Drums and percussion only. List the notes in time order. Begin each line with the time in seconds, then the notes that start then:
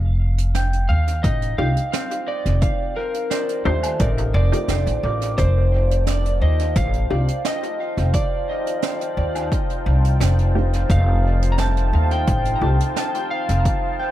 0.38 closed hi-hat
0.55 snare, closed hi-hat
0.73 closed hi-hat
1.07 closed hi-hat
1.24 kick, closed hi-hat
1.42 closed hi-hat
1.77 closed hi-hat
1.93 snare, closed hi-hat
2.11 closed hi-hat
2.46 closed hi-hat
2.61 kick, closed hi-hat
3.14 closed hi-hat
3.31 snare, closed hi-hat
3.49 closed hi-hat
3.83 closed hi-hat, low woodblock
3.99 kick, closed hi-hat
4.18 closed hi-hat
4.53 closed hi-hat
4.68 snare, closed hi-hat
4.87 closed hi-hat
5.22 closed hi-hat
5.38 kick, closed hi-hat
5.91 closed hi-hat
6.07 snare, closed hi-hat
6.25 closed hi-hat
6.59 closed hi-hat
6.76 kick, closed hi-hat
6.93 closed hi-hat
7.28 closed hi-hat
7.45 snare, closed hi-hat
7.63 closed hi-hat
7.98 closed hi-hat
8.13 kick, closed hi-hat
8.67 closed hi-hat
8.82 snare, closed hi-hat
9.01 closed hi-hat
9.35 closed hi-hat, low woodblock
9.52 kick, closed hi-hat
9.70 closed hi-hat
10.05 closed hi-hat
10.21 snare, closed hi-hat
10.39 closed hi-hat
10.73 closed hi-hat
10.90 kick, closed hi-hat
11.42 closed hi-hat
11.58 snare, closed hi-hat
11.77 closed hi-hat
12.11 closed hi-hat
12.27 kick, closed hi-hat
12.45 closed hi-hat
12.80 closed hi-hat
12.96 snare, closed hi-hat
13.14 closed hi-hat
13.49 closed hi-hat
13.65 kick, closed hi-hat